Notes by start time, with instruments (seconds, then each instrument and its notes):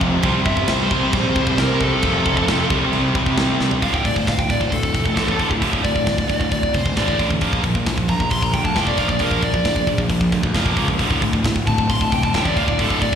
Already playing: distorted electric guitar F2 C3 F3, string section F3 A3 C4 A4 C5
0.01 picked electric bass F1, distorted electric guitar C3, kick
0.07 distorted electric guitar F2 C3
0.15 distorted electric guitar F2 C3
0.23 picked electric bass C2, distorted electric guitar C3 G3 C4, string section E3 G3 C4 G4, kick, china
0.31 distorted electric guitar C3 G3
0.40 distorted electric guitar C3 G3
0.46 picked electric bass G1, distorted electric guitar C3 G3, lead electric guitar E5, kick
0.56 distorted electric guitar C3 G3, kick
0.63 distorted electric guitar C3 G3
0.68 picked electric bass C2, distorted electric guitar C3 G3, lead electric guitar C5, snare, china
0.79 distorted electric guitar C3 G3
0.86 distorted electric guitar C3 G3
0.91 picked electric bass C2, distorted electric guitar C3, kick
0.95 distorted electric guitar G3
1.02 distorted electric guitar C3 G3
1.09 picked electric bass A#1, distorted electric guitar C3 G3, kick, china
1.15 distorted electric guitar C3, lead electric guitar C5
1.19 distorted electric guitar G3
1.26 distorted electric guitar C3 G3
1.33 picked electric bass C2, distorted electric guitar C3 G3, kick
1.40 distorted electric guitar C3 G3
1.47 distorted electric guitar C3 G3, kick
1.55 picked electric bass C2, distorted electric guitar C3 G3, lead electric guitar A#4, snare, china
1.63 distorted electric guitar C3 G3
1.71 distorted electric guitar C3 G3
1.80 distorted electric guitar C3 G3, lead electric guitar A4, kick
1.87 distorted electric guitar C3 G3
1.94 distorted electric guitar C3 G3
2.02 picked electric bass F1, distorted electric guitar F2 C3 F3, string section F3 A3 C4 A4, kick, china
2.11 distorted electric guitar F2 C3
2.17 distorted electric guitar F2 C3
2.25 picked electric bass F1, distorted electric guitar F2 C3, kick
2.33 distorted electric guitar F2 C3, kick
2.40 distorted electric guitar F2 C3
2.47 picked electric bass F1, distorted electric guitar F2, snare, china
2.52 distorted electric guitar F2 C3
2.60 distorted electric guitar F2 C3
2.69 picked electric bass C2, distorted electric guitar C3 G3, string section E3 G3 G4 C5, kick
2.73 distorted electric guitar C4
2.78 distorted electric guitar C3 G3
2.84 distorted electric guitar C3 G3
2.93 picked electric bass C2, distorted electric guitar C3 G3, china
2.99 distorted electric guitar C3 G3
3.08 distorted electric guitar C3 G3
3.15 picked electric bass C2, distorted electric guitar C3 G3, kick
3.22 distorted electric guitar C3 G3, kick
3.29 distorted electric guitar C3 G3
3.37 picked electric bass C2, distorted electric guitar C3 G3, snare, china
3.45 distorted electric guitar C3 G3
3.51 distorted electric guitar C3 G3
3.59 picked electric bass C2, distorted electric guitar C3 G3, snare
3.67 distorted electric guitar C3 G3, floor tom
3.74 distorted electric guitar C3 G3
3.81 picked electric bass D1, distorted electric guitar D2 A2 D3, lead electric guitar F5, kick, open hi-hat
3.94 lead electric guitar G5, kick
4.04 picked electric bass D1, distorted electric guitar D2 A2, lead electric guitar D5, kick, open hi-hat
4.16 distorted electric guitar D2 A2, lead electric guitar C5, kick
4.27 picked electric bass D1, distorted electric guitar D2 A2, lead electric guitar F5, kick, snare, open hi-hat
4.39 lead electric guitar G5, kick
4.50 picked electric bass D1, distorted electric guitar D2 A2, lead electric guitar D5, kick, open hi-hat
4.61 distorted electric guitar D2 A2, lead electric guitar C5, kick
4.72 picked electric bass D1, distorted electric guitar D2 A2, lead electric guitar A4, kick, open hi-hat
4.83 kick
4.94 picked electric bass F1, distorted electric guitar D2 A2, kick, open hi-hat
5.06 distorted electric guitar D2 A2, kick
5.14 picked electric bass A1, distorted electric guitar D2 A2 D3, kick, snare, open hi-hat
5.18 distorted electric guitar D2 A2 D3
5.28 kick
5.39 picked electric bass D1, distorted electric guitar D2 A2 D3, kick, open hi-hat
5.51 distorted electric guitar D2 A2, kick
5.62 picked electric bass D1, distorted electric guitar D2 A2 D3, kick, open hi-hat
5.73 kick
5.84 picked electric bass D1, distorted electric guitar D2 A2, lead electric guitar D5, kick, open hi-hat
5.96 distorted electric guitar D2 A2, kick
6.06 picked electric bass D1, distorted electric guitar D2 A2, kick, snare, open hi-hat
6.18 kick
6.29 picked electric bass D1, distorted electric guitar D2 A2, kick, open hi-hat
6.40 distorted electric guitar D2 A2, kick
6.52 picked electric bass D1, distorted electric guitar D2 A2, lead electric guitar D5, kick, open hi-hat
6.63 kick
6.74 picked electric bass F1, distorted electric guitar D2 A2, lead electric guitar C5, kick, open hi-hat
6.86 distorted electric guitar D2 A2, kick
6.96 picked electric bass A1, distorted electric guitar D2 A2 D3, lead electric guitar D5, kick, snare, open hi-hat
7.08 kick
7.18 picked electric bass A1, distorted electric guitar D2 A2 D3, kick, open hi-hat
7.30 distorted electric guitar D2 A2, kick
7.41 picked electric bass A#1, distorted electric guitar A#2 F3 A#3, kick, open hi-hat
7.53 kick
7.64 picked electric bass A#1, distorted electric guitar A#2 F3, kick, open hi-hat
7.75 distorted electric guitar A#2 F3, kick
7.86 picked electric bass A#1, distorted electric guitar A#2 F3, kick, snare, open hi-hat
7.98 kick
8.08 picked electric bass A#1, distorted electric guitar A#2 F3, lead electric guitar A#5, kick, open hi-hat
8.18 distorted electric guitar A#2 F3, kick
8.30 picked electric bass A#1, distorted electric guitar A#2 F3, lead electric guitar C6, kick, open hi-hat
8.42 lead electric guitar A#5, kick
8.52 picked electric bass D2, distorted electric guitar A#2 F3, lead electric guitar G5, kick, open hi-hat
8.63 distorted electric guitar A#2 F3, lead electric guitar A5, kick
8.74 picked electric bass F1, distorted electric guitar A#2 F3 A#3, lead electric guitar G5, kick, snare, open hi-hat
8.87 lead electric guitar D5, kick
8.97 picked electric bass A#1, distorted electric guitar A#2 F3 A#3, lead electric guitar F5, kick, open hi-hat
9.08 distorted electric guitar A#2 F3, lead electric guitar D5, kick
9.19 picked electric bass A#1, distorted electric guitar A#2 F3 A#3, lead electric guitar A#4, kick, open hi-hat
9.31 kick
9.42 picked electric bass A#1, distorted electric guitar A#2 F3, lead electric guitar D5, kick, open hi-hat
9.54 distorted electric guitar A#2 F3, kick
9.65 picked electric bass A#1, distorted electric guitar A#2 F3, kick, snare, open hi-hat
9.76 kick
9.87 picked electric bass A#1, distorted electric guitar A#2 F3, kick, open hi-hat
9.98 distorted electric guitar A#2 F3, kick
10.09 picked electric bass A#1, distorted electric guitar A#2 F3, kick, open hi-hat
10.21 kick
10.32 picked electric bass D2, distorted electric guitar A#2 F3, kick, open hi-hat
10.43 distorted electric guitar A#2 F3, kick
10.53 picked electric bass F1, distorted electric guitar A#2 F3 A#3, kick, snare, open hi-hat
10.66 kick
10.76 picked electric bass C#2, distorted electric guitar A#2 F3 A#3, kick, open hi-hat
10.87 distorted electric guitar A#2 F3, kick
10.97 picked electric bass D1, distorted electric guitar D2 A2 D3, kick, open hi-hat
11.11 kick
11.21 picked electric bass D1, distorted electric guitar D2 A2, kick, open hi-hat
11.32 distorted electric guitar D2 A2, kick
11.43 picked electric bass D1, distorted electric guitar D2 A2, kick, snare, open hi-hat
11.56 kick
11.65 picked electric bass D1, distorted electric guitar D2 A2, lead electric guitar A5, kick, open hi-hat
11.76 distorted electric guitar D2 A2, kick
11.89 picked electric bass D1, distorted electric guitar D2 A2, lead electric guitar C6, kick, open hi-hat
12.01 lead electric guitar A5, kick
12.10 picked electric bass F1, distorted electric guitar D2 A2, lead electric guitar G5, kick, open hi-hat
12.22 distorted electric guitar D2 A2, lead electric guitar A5, kick
12.33 picked electric bass A1, distorted electric guitar D2 A2 D3, lead electric guitar G5, kick, snare, open hi-hat
12.45 lead electric guitar D5, kick
12.55 picked electric bass D1, distorted electric guitar D2 A2 D3, lead electric guitar F5, kick, open hi-hat
12.67 distorted electric guitar D2 A2, lead electric guitar D5, kick
12.78 picked electric bass D1, distorted electric guitar D2 A2 D3, lead electric guitar A4, kick, open hi-hat
12.90 kick
13.01 picked electric bass D1, distorted electric guitar D2 A2, lead electric guitar D5, kick, open hi-hat
13.12 distorted electric guitar D2 A2